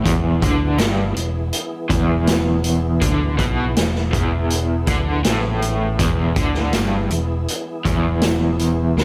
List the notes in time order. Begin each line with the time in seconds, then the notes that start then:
Already playing: E3 B3 E4 G#4
0.04 E1 E2, kick, closed hi-hat, tambourine
0.42 D2 D3, kick, closed hi-hat, tambourine
0.78 G1 G2, snare, closed hi-hat, tambourine
1.15 E1 E2, closed hi-hat
1.53 closed hi-hat
1.89 E1 E2, kick, closed hi-hat, tambourine
2.27 snare, closed hi-hat, tambourine
2.64 closed hi-hat, tambourine
3.01 D2 D3, kick, closed hi-hat, tambourine
3.38 B1 B2, kick, closed hi-hat, tambourine
3.75 E1 E2, snare, closed hi-hat, tambourine
3.96 snare
4.12 E1 E2, kick, closed hi-hat, tambourine
4.50 closed hi-hat
4.87 D2 D3, kick, closed hi-hat, tambourine
5.24 A1 A2, snare, closed hi-hat, tambourine
5.62 closed hi-hat, tambourine
5.99 E1 E2, kick, closed hi-hat, tambourine
6.36 D2 D3, kick, closed hi-hat, tambourine
6.54 snare
6.73 G1 G2, snare, closed hi-hat, tambourine
7.10 E1 E2, closed hi-hat, tambourine
7.48 closed hi-hat
7.85 E1 E2, kick, closed hi-hat, tambourine
8.22 snare, closed hi-hat, tambourine
8.59 closed hi-hat, tambourine
8.97 D2 D3, snare, tambourine